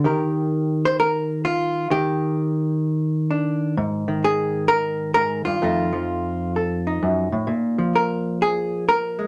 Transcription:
0.04 1.89 D#3 medium
0.04 1.91 G4 soft
0.04 0.85 A#4 medium
0.85 0.99 C5 loud
1.00 1.44 A#4 loud
1.45 1.91 F4 medium
1.90 4.07 D#3 medium
1.90 3.77 G4 medium
3.31 3.75 D4 soft
3.77 5.15 G#2 medium
4.08 5.92 D#3 medium
4.24 4.68 G#4 loud
4.68 5.13 A#4 loud
5.14 5.46 G#2 medium
5.14 5.45 A#4 loud
5.45 5.62 G2 medium
5.45 6.54 F4 medium
5.62 7.01 F2 medium
5.62 7.46 A3 soft
5.62 6.87 D#4 soft
5.93 7.46 F3 medium
6.56 7.46 A4 medium
6.87 7.81 D#4 soft
7.03 7.32 F#2 medium
7.32 7.48 A2 medium
7.47 9.27 A#2 medium
7.78 9.27 F3 medium
7.95 8.41 A#4 medium
8.42 8.88 G#4 medium
8.89 9.27 A#4 loud
9.19 9.27 G#3 soft

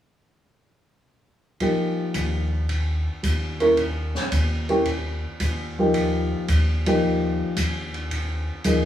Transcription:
1.60 2.45 F3 soft
1.60 2.45 A#3 soft
1.60 2.45 D#4 soft
1.60 2.46 G4 soft
1.60 kick soft
1.60 ride soft
2.14 3.06 D#2 medium
2.14 kick soft
2.14 hi-hat pedal soft
2.14 ride soft
2.69 kick soft
2.69 ride soft
3.23 4.15 D#2 medium
3.23 kick soft
3.23 hi-hat pedal soft
3.23 ride soft
3.60 3.76 A#3 medium
3.60 3.76 C#4 soft
3.60 3.76 E4 soft
3.60 3.77 A#4 medium
3.60 ride soft
3.77 kick soft
3.77 ride soft
4.15 snare soft
4.32 5.23 D#2 medium
4.32 kick soft
4.32 hi-hat pedal soft
4.32 ride soft
4.69 4.84 A#3 medium
4.69 4.85 C#4 soft
4.69 4.85 E4 soft
4.69 4.85 G4 medium
4.69 ride soft
4.85 kick soft
4.85 ride soft
5.40 6.31 D#2 medium
5.40 kick soft
5.40 hi-hat pedal soft
5.40 ride soft
5.79 6.46 F3 soft
5.79 6.46 A#3 soft
5.79 6.46 D#4 soft
5.79 6.47 G4 medium
5.94 kick soft
5.94 ride soft
6.48 7.40 D#2 medium
6.48 kick soft
6.48 hi-hat pedal soft
6.48 ride soft
6.86 7.54 F3 medium
6.86 7.54 A#3 soft
6.86 7.54 D#4 soft
6.86 7.55 G4 medium
6.86 ride soft
7.03 kick soft
7.57 8.48 D#2 medium
7.57 kick soft
7.57 hi-hat pedal soft
7.57 ride soft
7.94 ride soft
8.11 kick soft
8.11 ride soft
8.64 8.85 D#2 medium
8.64 8.85 F3 soft
8.64 8.85 A#3 soft
8.64 8.85 D#4 soft
8.64 8.85 G#4 soft
8.64 kick soft
8.64 hi-hat pedal soft
8.64 ride soft

